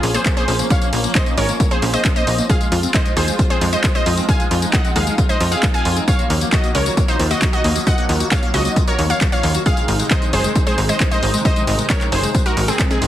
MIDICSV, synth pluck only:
0, 0, Header, 1, 2, 480
1, 0, Start_track
1, 0, Key_signature, -5, "minor"
1, 0, Tempo, 447761
1, 755, Time_signature, 4, 2, 24, 8
1, 14012, End_track
2, 0, Start_track
2, 0, Title_t, "Synth pluck"
2, 0, Program_c, 0, 84
2, 0, Note_on_c, 0, 65, 76
2, 0, Note_on_c, 0, 68, 88
2, 111, Note_off_c, 0, 65, 0
2, 111, Note_off_c, 0, 68, 0
2, 154, Note_on_c, 0, 68, 80
2, 154, Note_on_c, 0, 72, 86
2, 351, Note_off_c, 0, 68, 0
2, 351, Note_off_c, 0, 72, 0
2, 394, Note_on_c, 0, 68, 79
2, 394, Note_on_c, 0, 72, 97
2, 688, Note_off_c, 0, 68, 0
2, 689, Note_off_c, 0, 72, 0
2, 754, Note_on_c, 0, 73, 79
2, 754, Note_on_c, 0, 77, 101
2, 1146, Note_off_c, 0, 73, 0
2, 1146, Note_off_c, 0, 77, 0
2, 1234, Note_on_c, 0, 72, 78
2, 1234, Note_on_c, 0, 75, 90
2, 1430, Note_off_c, 0, 72, 0
2, 1431, Note_off_c, 0, 75, 0
2, 1474, Note_on_c, 0, 70, 72
2, 1474, Note_on_c, 0, 73, 95
2, 1768, Note_off_c, 0, 70, 0
2, 1768, Note_off_c, 0, 73, 0
2, 1834, Note_on_c, 0, 72, 86
2, 1835, Note_on_c, 0, 68, 80
2, 2030, Note_off_c, 0, 72, 0
2, 2031, Note_off_c, 0, 68, 0
2, 2074, Note_on_c, 0, 72, 74
2, 2074, Note_on_c, 0, 75, 88
2, 2270, Note_off_c, 0, 72, 0
2, 2270, Note_off_c, 0, 75, 0
2, 2315, Note_on_c, 0, 72, 78
2, 2315, Note_on_c, 0, 75, 101
2, 2609, Note_off_c, 0, 72, 0
2, 2609, Note_off_c, 0, 75, 0
2, 2675, Note_on_c, 0, 68, 79
2, 2675, Note_on_c, 0, 77, 98
2, 3067, Note_off_c, 0, 68, 0
2, 3067, Note_off_c, 0, 77, 0
2, 3154, Note_on_c, 0, 75, 90
2, 3155, Note_on_c, 0, 72, 79
2, 3351, Note_off_c, 0, 72, 0
2, 3351, Note_off_c, 0, 75, 0
2, 3394, Note_on_c, 0, 68, 78
2, 3394, Note_on_c, 0, 72, 90
2, 3689, Note_off_c, 0, 68, 0
2, 3689, Note_off_c, 0, 72, 0
2, 3754, Note_on_c, 0, 68, 78
2, 3754, Note_on_c, 0, 72, 91
2, 3951, Note_off_c, 0, 68, 0
2, 3951, Note_off_c, 0, 72, 0
2, 3995, Note_on_c, 0, 72, 76
2, 3995, Note_on_c, 0, 75, 87
2, 4191, Note_off_c, 0, 72, 0
2, 4191, Note_off_c, 0, 75, 0
2, 4234, Note_on_c, 0, 75, 95
2, 4235, Note_on_c, 0, 72, 80
2, 4529, Note_off_c, 0, 72, 0
2, 4529, Note_off_c, 0, 75, 0
2, 4595, Note_on_c, 0, 77, 80
2, 4595, Note_on_c, 0, 80, 99
2, 4987, Note_off_c, 0, 77, 0
2, 4987, Note_off_c, 0, 80, 0
2, 5074, Note_on_c, 0, 75, 75
2, 5075, Note_on_c, 0, 78, 93
2, 5271, Note_off_c, 0, 75, 0
2, 5271, Note_off_c, 0, 78, 0
2, 5315, Note_on_c, 0, 68, 74
2, 5315, Note_on_c, 0, 77, 93
2, 5609, Note_off_c, 0, 68, 0
2, 5609, Note_off_c, 0, 77, 0
2, 5674, Note_on_c, 0, 72, 79
2, 5674, Note_on_c, 0, 75, 89
2, 5870, Note_off_c, 0, 72, 0
2, 5870, Note_off_c, 0, 75, 0
2, 5914, Note_on_c, 0, 68, 74
2, 5914, Note_on_c, 0, 77, 91
2, 6111, Note_off_c, 0, 68, 0
2, 6111, Note_off_c, 0, 77, 0
2, 6154, Note_on_c, 0, 80, 98
2, 6155, Note_on_c, 0, 77, 77
2, 6449, Note_off_c, 0, 77, 0
2, 6449, Note_off_c, 0, 80, 0
2, 6515, Note_on_c, 0, 73, 81
2, 6515, Note_on_c, 0, 77, 100
2, 6907, Note_off_c, 0, 73, 0
2, 6907, Note_off_c, 0, 77, 0
2, 6994, Note_on_c, 0, 66, 77
2, 6994, Note_on_c, 0, 75, 94
2, 7191, Note_off_c, 0, 66, 0
2, 7191, Note_off_c, 0, 75, 0
2, 7234, Note_on_c, 0, 70, 76
2, 7234, Note_on_c, 0, 73, 93
2, 7528, Note_off_c, 0, 73, 0
2, 7529, Note_off_c, 0, 70, 0
2, 7594, Note_on_c, 0, 63, 76
2, 7594, Note_on_c, 0, 72, 84
2, 7790, Note_off_c, 0, 63, 0
2, 7791, Note_off_c, 0, 72, 0
2, 7834, Note_on_c, 0, 75, 88
2, 7835, Note_on_c, 0, 66, 77
2, 8031, Note_off_c, 0, 66, 0
2, 8031, Note_off_c, 0, 75, 0
2, 8075, Note_on_c, 0, 66, 76
2, 8075, Note_on_c, 0, 75, 96
2, 8369, Note_off_c, 0, 66, 0
2, 8369, Note_off_c, 0, 75, 0
2, 8435, Note_on_c, 0, 75, 79
2, 8435, Note_on_c, 0, 78, 106
2, 8827, Note_off_c, 0, 75, 0
2, 8827, Note_off_c, 0, 78, 0
2, 8914, Note_on_c, 0, 73, 77
2, 8914, Note_on_c, 0, 77, 89
2, 9111, Note_off_c, 0, 73, 0
2, 9111, Note_off_c, 0, 77, 0
2, 9154, Note_on_c, 0, 66, 75
2, 9154, Note_on_c, 0, 75, 97
2, 9449, Note_off_c, 0, 66, 0
2, 9449, Note_off_c, 0, 75, 0
2, 9515, Note_on_c, 0, 70, 75
2, 9515, Note_on_c, 0, 73, 93
2, 9711, Note_off_c, 0, 70, 0
2, 9711, Note_off_c, 0, 73, 0
2, 9754, Note_on_c, 0, 73, 73
2, 9754, Note_on_c, 0, 77, 91
2, 9950, Note_off_c, 0, 73, 0
2, 9950, Note_off_c, 0, 77, 0
2, 9994, Note_on_c, 0, 73, 78
2, 9994, Note_on_c, 0, 77, 95
2, 10289, Note_off_c, 0, 73, 0
2, 10289, Note_off_c, 0, 77, 0
2, 10354, Note_on_c, 0, 68, 77
2, 10354, Note_on_c, 0, 77, 109
2, 10746, Note_off_c, 0, 68, 0
2, 10746, Note_off_c, 0, 77, 0
2, 10834, Note_on_c, 0, 72, 80
2, 10834, Note_on_c, 0, 75, 86
2, 11030, Note_off_c, 0, 72, 0
2, 11030, Note_off_c, 0, 75, 0
2, 11075, Note_on_c, 0, 68, 78
2, 11075, Note_on_c, 0, 72, 94
2, 11369, Note_off_c, 0, 68, 0
2, 11369, Note_off_c, 0, 72, 0
2, 11435, Note_on_c, 0, 68, 76
2, 11435, Note_on_c, 0, 72, 86
2, 11631, Note_off_c, 0, 68, 0
2, 11631, Note_off_c, 0, 72, 0
2, 11675, Note_on_c, 0, 72, 76
2, 11675, Note_on_c, 0, 75, 84
2, 11871, Note_off_c, 0, 72, 0
2, 11871, Note_off_c, 0, 75, 0
2, 11915, Note_on_c, 0, 72, 79
2, 11915, Note_on_c, 0, 75, 100
2, 12209, Note_off_c, 0, 72, 0
2, 12209, Note_off_c, 0, 75, 0
2, 12275, Note_on_c, 0, 72, 81
2, 12275, Note_on_c, 0, 75, 108
2, 12667, Note_off_c, 0, 72, 0
2, 12667, Note_off_c, 0, 75, 0
2, 12754, Note_on_c, 0, 70, 77
2, 12754, Note_on_c, 0, 73, 88
2, 12951, Note_off_c, 0, 70, 0
2, 12951, Note_off_c, 0, 73, 0
2, 12994, Note_on_c, 0, 68, 77
2, 12994, Note_on_c, 0, 72, 90
2, 13289, Note_off_c, 0, 68, 0
2, 13289, Note_off_c, 0, 72, 0
2, 13354, Note_on_c, 0, 66, 77
2, 13354, Note_on_c, 0, 70, 93
2, 13551, Note_off_c, 0, 66, 0
2, 13551, Note_off_c, 0, 70, 0
2, 13595, Note_on_c, 0, 60, 73
2, 13595, Note_on_c, 0, 68, 86
2, 13791, Note_off_c, 0, 60, 0
2, 13791, Note_off_c, 0, 68, 0
2, 13835, Note_on_c, 0, 60, 75
2, 13835, Note_on_c, 0, 68, 99
2, 14012, Note_off_c, 0, 60, 0
2, 14012, Note_off_c, 0, 68, 0
2, 14012, End_track
0, 0, End_of_file